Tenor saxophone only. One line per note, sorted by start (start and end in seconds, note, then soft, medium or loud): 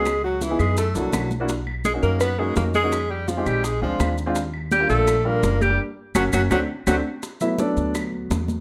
0.00 0.21 G#3 medium
0.24 0.44 F#3 medium
0.42 0.59 E3 medium
0.60 0.76 G#3 medium
0.78 0.97 A3 medium
0.96 1.31 F#3 medium
1.85 1.93 G#3 medium
2.03 2.20 A#3 medium
2.21 2.40 B3 medium
2.39 2.56 G#3 medium
2.56 2.65 A#3 medium
2.75 3.12 G#3 medium
3.11 3.30 G3 medium
3.29 3.49 F3 medium
3.47 3.66 G3 medium
3.65 3.82 G#3 medium
3.83 4.16 F3 medium
4.72 4.88 G3 medium
4.89 5.27 A3 medium
5.25 5.63 A#3 medium
5.61 5.79 G3 medium
6.15 6.24 F#3 medium
6.33 6.42 F#3 medium
6.52 6.60 F#3 medium
6.87 6.96 F#3 medium